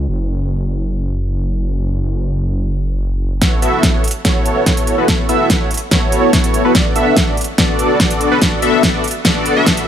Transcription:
0.08 detuned saw bass F#1
3.42 analog polysynth B3 E4 F#4 A4 C#5, kick, snare, closed hi-hat
3.62 analog polysynth B3 E4 F#4 A4 E5, closed hi-hat
3.83 kick, snare, closed hi-hat
3.94 analog polysynth B3 E4 F#4 A4 C#5
4.04 closed hi-hat
4.08 closed hi-hat
4.11 closed hi-hat
4.25 analog polysynth B3 E4 F#4 A4 C#5, kick, snare, closed hi-hat
4.46 closed hi-hat
4.66 analog polysynth B3 E4 F#4 A4 C#5, kick, snare, closed hi-hat
4.77 closed hi-hat
4.87 closed hi-hat
4.98 analog polysynth B3 E4 F#4 A4 B4
5.08 analog polysynth B3 E4 F#4 A4 C#5, kick, snare, closed hi-hat
5.29 analog polysynth B3 E4 F#4 A4 E5, closed hi-hat
5.50 kick, snare, closed hi-hat
5.61 analog polysynth B3 E4 F#4 A4 C#5
5.71 closed hi-hat
5.74 closed hi-hat
5.77 closed hi-hat
5.91 analog polysynth B3 E4 F#4 A4 C#5, kick, snare, closed hi-hat
6.12 closed hi-hat
6.33 analog polysynth B3 E4 F#4 A4 C#5, kick, snare, closed hi-hat
6.44 closed hi-hat
6.54 closed hi-hat
6.65 analog polysynth B3 E4 F#4 A4 B4
6.75 analog polysynth B3 D4 F#4 A4 D5, kick, snare, closed hi-hat
6.96 analog polysynth B3 D4 F#4 A4 E5, closed hi-hat
7.16 kick, snare, closed hi-hat
7.27 analog polysynth B3 D4 F#4 A4 D5
7.37 closed hi-hat
7.41 closed hi-hat
7.44 closed hi-hat
7.58 analog polysynth B3 D4 F#4 A4 D5, kick, snare, closed hi-hat
7.79 closed hi-hat
8.00 analog polysynth B3 D4 F#4 A4 D5, kick, snare, closed hi-hat
8.11 closed hi-hat
8.21 closed hi-hat
8.31 analog polysynth B3 D4 F#4 A4 B4
8.41 analog polysynth B3 D4 F#4 A4 D5, kick, snare, closed hi-hat
8.62 analog polysynth B3 D4 F#4 A4 E5, closed hi-hat
8.83 kick, snare, closed hi-hat
8.94 analog polysynth B3 D4 F#4 A4 D5
9.04 closed hi-hat
9.08 closed hi-hat
9.11 closed hi-hat
9.25 analog polysynth B3 D4 F#4 A4 D5, kick, snare, closed hi-hat
9.46 closed hi-hat
9.56 analog polysynth B3 D4 F#4 A4 E5
9.66 kick, snare, closed hi-hat
9.77 closed hi-hat

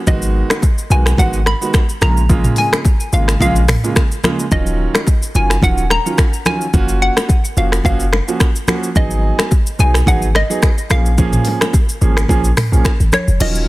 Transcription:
0.07 808-style bass G#1, grand piano D#3 G#3 B3 F#4, synth pluck D#5, kick, low conga, shaker
0.22 shaker
0.50 finger snap, cross-stick, low bongo, shaker
0.62 kick, high bongo, shaker
0.78 shaker
0.90 808-style bass B1, grand piano D#3 G#3 B3 F#4, synth pluck G#5, shaker
1.06 finger snap, cross-stick, shaker
1.17 808-style bass G#1, grand piano D#3 G#3 B3 F#4, synth pluck F#5, kick, low conga, shaker
1.33 shaker
1.46 synth pluck B5, finger snap, cross-stick, low bongo
1.61 grand piano D#3 G#3 B3 F#4, shaker
1.74 finger snap, kick, cross-stick, high bongo, shaker
1.89 shaker
2.01 808-style bass A#1, grand piano C#3 G#3 A#3 F4, synth pluck A#5, finger snap, cross-stick, low conga, shaker
2.17 shaker
2.29 grand piano C#3 G#3 A#3 F4, kick, low conga, shaker
2.44 mid tom, shaker
2.56 synth pluck G#5, open hi-hat, low bongo, shaker
2.73 finger snap, cross-stick, low bongo, shaker
2.85 kick, high bongo, shaker
3.00 shaker
3.13 808-style bass G#1, grand piano C#3 G#3 A#3 F4, synth pluck F5, shaker
3.28 finger snap, cross-stick, shaker
3.40 808-style bass A#1, grand piano C#3 G#3 A#3 F4, synth pluck F5, kick, low conga, shaker
3.56 shaker
3.68 finger snap, cross-stick, mid tom, open hi-hat, low bongo, shaker
3.84 grand piano C#3 G#3 A#3 F4, shaker
3.96 finger snap, kick, cross-stick, high bongo, shaker
4.11 shaker
4.24 grand piano C#3 G#3 A#3 F4, finger snap, cross-stick, high bongo, low conga, shaker
4.39 high bongo, shaker
4.51 808-style bass D#1, grand piano D#3 F#3 C#4 F4, synth pluck D#5, kick, low conga, shaker
4.66 shaker
4.95 finger snap, cross-stick, low bongo, shaker
5.07 kick, high bongo, shaker
5.22 shaker
5.35 808-style bass F#1, grand piano D#3 F#3 C#4 F4, synth pluck G#5, shaker
5.50 finger snap, cross-stick, shaker
5.62 808-style bass D#1, grand piano D#3 F#3 C#4 F4, synth pluck F#5, kick, low conga, shaker
5.78 shaker
5.90 synth pluck A#5, finger snap, cross-stick, low bongo
6.06 grand piano D#3 F#3 C#4 F4, shaker
6.18 finger snap, kick, cross-stick, high bongo, shaker
6.33 shaker
6.46 grand piano D#3 F#3 C#4 F4, synth pluck G#5, finger snap, cross-stick, low conga, shaker
6.61 shaker
6.73 808-style bass F#1, grand piano A#3 C#4 F4 F#4, kick, low conga, shaker
6.88 shaker
7.02 synth pluck F#5
7.17 finger snap, cross-stick, low bongo, shaker
7.29 kick, high bongo, shaker
7.45 shaker
7.57 808-style bass F1, grand piano F3 A#3 C#4 F#4, synth pluck F5, shaker
7.72 finger snap, cross-stick, shaker
7.84 808-style bass F#1, grand piano F3 A#3 C#4 F#4, synth pluck F5, kick, low conga, shaker
8.00 shaker
8.13 finger snap, cross-stick, low bongo
8.28 grand piano F3 A#3 C#4 F#4, shaker
8.40 finger snap, kick, cross-stick, high bongo, shaker
8.56 shaker
8.68 grand piano F3 A#3 C#4 F#4, finger snap, cross-stick, low conga, shaker
8.83 shaker
8.95 808-style bass G#1, grand piano F#3 B3 D#4 G#4, synth pluck D#5, kick, low conga, shaker
9.11 shaker
9.39 finger snap, cross-stick, low bongo, shaker
9.51 kick, high bongo, shaker
9.67 shaker
9.79 808-style bass B1, grand piano F#3 B3 D#4 G#4, synth pluck G#5, shaker
9.94 finger snap, cross-stick, shaker
10.06 808-style bass G#1, grand piano F#3 B3 D#4 G#4, synth pluck F#5, kick, low conga, shaker
10.22 shaker
10.35 synth pluck D#5, finger snap, cross-stick, low bongo
10.50 grand piano F#3 B3 D#4 G#4, shaker
10.62 finger snap, kick, cross-stick, high bongo, shaker
10.78 shaker
10.90 808-style bass A#1, grand piano F3 A#3 C#4 G#4, synth pluck F5, finger snap, cross-stick, low conga, shaker
11.06 shaker
11.18 grand piano F3 A#3 C#4 G#4, kick, low conga, shaker
11.33 mid tom, shaker
11.45 open hi-hat, low bongo, shaker
11.61 finger snap, cross-stick, low bongo, shaker
11.73 kick, high bongo, shaker
11.89 shaker
12.01 808-style bass G#1, grand piano F3 A#3 C#4 G#4, shaker
12.17 finger snap, cross-stick, shaker
12.28 808-style bass A#1, grand piano F3 A#3 C#4 G#4, kick, low conga, shaker
12.44 shaker
12.57 finger snap, cross-stick, mid tom, open hi-hat, low bongo, shaker
12.72 808-style bass A#1, grand piano F3 A#3 C#4 G#4, shaker
12.85 finger snap, kick, cross-stick, high bongo, shaker
13.00 808-style bass G#1, shaker
13.12 synth pluck C#5, finger snap, cross-stick, low conga, shaker
13.28 808-style bass F1, shaker
13.40 808-style bass D#1, grand piano D#3 F#3 C#4 F4, synth pluck D#5, crash, low conga, shaker
13.55 shaker

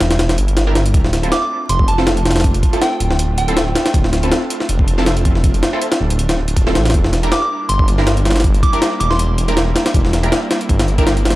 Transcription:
Already playing: analog synth pad G3 A#3 D4 E4
0.00 detuned saw bass E1, snare, closed hi-hat
0.11 snare, closed hi-hat
0.19 snare, closed hi-hat
0.29 snare, closed hi-hat
0.38 detuned saw bass G1, closed hi-hat
0.48 closed hi-hat
0.57 snare, closed hi-hat
0.67 synth stab D4 E4 G4 A#4
0.75 snare, closed hi-hat
0.86 closed hi-hat
0.94 detuned saw bass D1, analog synth pad A3 C4 D4 F4, kick, closed hi-hat
1.04 snare
1.13 snare, closed hi-hat
1.23 synth stab C4 E4 F4 A4, closed hi-hat
1.32 synth bell D6, snare, closed hi-hat
1.42 synth bell D6
1.69 detuned saw bass F1, synth bell C6, closed hi-hat
1.79 kick
1.88 synth bell A5, closed hi-hat
1.98 synth stab C4 E4 F4 A4, snare
2.07 snare, closed hi-hat
2.17 closed hi-hat
2.25 snare, closed hi-hat
2.31 snare, closed hi-hat
2.36 snare, closed hi-hat
2.40 snare, closed hi-hat
2.44 kick, closed hi-hat
2.54 closed hi-hat
2.63 kick, closed hi-hat
2.73 synth stab C4 E4 F4 A4, closed hi-hat
2.81 synth bell G5, snare, closed hi-hat
3.00 detuned saw bass D1, closed hi-hat
3.11 snare
3.19 closed hi-hat
3.38 detuned saw bass D1, synth bell G5, closed hi-hat
3.48 synth stab C4 E4 F4 A4, closed hi-hat
3.57 snare, closed hi-hat
3.75 snare, closed hi-hat
3.86 snare, closed hi-hat
3.94 detuned saw bass D1, kick, closed hi-hat
4.04 snare
4.13 snare, closed hi-hat
4.23 synth stab C4 E4 F4 A4, closed hi-hat
4.32 snare, closed hi-hat
4.50 closed hi-hat
4.60 snare
4.69 detuned saw bass F1, closed hi-hat
4.79 kick
4.88 closed hi-hat
4.98 synth stab C4 E4 F4 A4, snare
5.06 snare, closed hi-hat
5.17 closed hi-hat
5.25 kick, closed hi-hat
5.35 snare
5.44 kick, closed hi-hat
5.54 closed hi-hat
5.63 snare, closed hi-hat
5.73 synth stab C4 E4 F4 A4
5.81 closed hi-hat
5.92 snare, closed hi-hat
6.00 detuned saw bass D1
6.10 closed hi-hat
6.19 closed hi-hat
6.29 snare, closed hi-hat
6.38 detuned saw bass D1
6.48 closed hi-hat
6.57 kick, closed hi-hat
6.67 synth stab C4 E4 F4 A4, snare
6.75 detuned saw bass A1, snare, closed hi-hat
6.85 snare, closed hi-hat
6.90 snare, closed hi-hat
6.94 detuned saw bass E1, analog synth pad G3 A#3 E4, kick, closed hi-hat
7.04 snare
7.13 snare, closed hi-hat
7.23 synth stab D4 E4 G4 A#4, closed hi-hat
7.32 synth bell D6, snare, closed hi-hat
7.42 synth bell D6
7.69 detuned saw bass G1, synth bell C6, closed hi-hat
7.79 kick
7.88 closed hi-hat
7.98 synth stab D4 E4 G4 A#4, snare
8.07 snare, closed hi-hat
8.17 closed hi-hat
8.25 snare, closed hi-hat
8.31 snare, closed hi-hat
8.36 snare, closed hi-hat
8.40 snare, closed hi-hat
8.44 kick, closed hi-hat
8.54 closed hi-hat
8.63 synth bell D6, kick, closed hi-hat
8.73 synth stab D4 E4 G4 A#4, synth bell D6, closed hi-hat
8.82 snare, closed hi-hat
9.00 detuned saw bass E1, synth bell D6, closed hi-hat
9.10 synth bell C6, snare
9.19 closed hi-hat
9.38 detuned saw bass E1, closed hi-hat
9.48 synth stab D4 E4 G4 A#4, closed hi-hat
9.57 snare, closed hi-hat
9.76 snare, closed hi-hat
9.86 snare, closed hi-hat
9.94 detuned saw bass E1, analog synth pad C4, kick, closed hi-hat
10.05 snare
10.13 snare, closed hi-hat
10.23 synth stab D4 E4 G4 A#4, closed hi-hat
10.32 snare, closed hi-hat
10.51 snare, closed hi-hat
10.61 closed hi-hat
10.69 detuned saw bass G1, kick, closed hi-hat
10.79 snare, closed hi-hat
10.88 closed hi-hat
10.98 synth stab D4 E4 G4 A#4, kick, closed hi-hat
11.07 snare, closed hi-hat
11.17 closed hi-hat
11.25 snare, closed hi-hat
11.30 snare, closed hi-hat

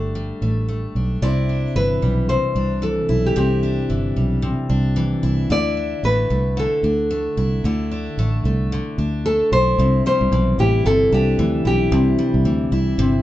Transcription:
Already playing: fingered electric bass G1, steel-string acoustic guitar D3 G3 A3 D4, nylon-string guitar A4
0.15 steel-string acoustic guitar G3
0.42 fingered electric bass A1, steel-string acoustic guitar A3
0.69 steel-string acoustic guitar A3
0.95 fingered electric bass B1, steel-string acoustic guitar D4
1.22 fingered electric bass C2, steel-string acoustic guitar C3 E4, nylon-string guitar D5
1.49 steel-string acoustic guitar D4
1.75 fingered electric bass G1, steel-string acoustic guitar E3, nylon-string guitar B4
2.02 fingered electric bass B1, steel-string acoustic guitar G3
2.29 steel-string acoustic guitar C3, nylon-string guitar C5
2.55 fingered electric bass C2, steel-string acoustic guitar D4
2.82 steel-string acoustic guitar E3, nylon-string guitar A4
3.09 fingered electric bass B1, steel-string acoustic guitar E4
3.26 nylon-string guitar G4
3.36 fingered electric bass C2, steel-string acoustic guitar C3 E4, nylon-string guitar G4
3.63 steel-string acoustic guitar D4
3.90 fingered electric bass G1, steel-string acoustic guitar E3
4.16 fingered electric bass B1, steel-string acoustic guitar G3
4.42 steel-string acoustic guitar C3
4.70 fingered electric bass C2, steel-string acoustic guitar D4
4.96 steel-string acoustic guitar E3
5.23 fingered electric bass C2, steel-string acoustic guitar E4
5.50 fingered electric bass D2, steel-string acoustic guitar D3 E4, nylon-string guitar D5
5.77 steel-string acoustic guitar D4
6.03 fingered electric bass A1, steel-string acoustic guitar A3, nylon-string guitar B4
6.30 fingered electric bass C2, steel-string acoustic guitar A3
6.57 steel-string acoustic guitar D3, nylon-string guitar A4
6.83 fingered electric bass D2, steel-string acoustic guitar D4
7.11 steel-string acoustic guitar A3
7.37 fingered electric bass C2, steel-string acoustic guitar E4
7.64 fingered electric bass D2, steel-string acoustic guitar D3 E4
7.91 steel-string acoustic guitar D4
8.18 fingered electric bass A1, steel-string acoustic guitar A3
8.44 fingered electric bass C2, steel-string acoustic guitar A3
8.72 steel-string acoustic guitar D3
8.98 fingered electric bass D2, steel-string acoustic guitar D4
9.26 steel-string acoustic guitar A3, nylon-string guitar A4
9.52 fingered electric bass B1, steel-string acoustic guitar E4, nylon-string guitar C5
9.78 fingered electric bass C2, steel-string acoustic guitar C3
10.06 steel-string acoustic guitar G3, nylon-string guitar C5
10.21 fingered electric bass C2
10.32 fingered electric bass B1, steel-string acoustic guitar E3
10.58 fingered electric bass A1, steel-string acoustic guitar E4, nylon-string guitar G4
10.85 fingered electric bass G1, steel-string acoustic guitar C3, nylon-string guitar A4
11.12 fingered electric bass C2, steel-string acoustic guitar D4, nylon-string guitar G4
11.39 fingered electric bass D2, steel-string acoustic guitar E3
11.65 fingered electric bass B1, steel-string acoustic guitar E4, nylon-string guitar G4
11.92 fingered electric bass C2, steel-string acoustic guitar C3
12.19 steel-string acoustic guitar G3
12.34 fingered electric bass C2
12.45 fingered electric bass D2, steel-string acoustic guitar E3
12.72 fingered electric bass C2, steel-string acoustic guitar E4
12.98 fingered electric bass G1, steel-string acoustic guitar C3

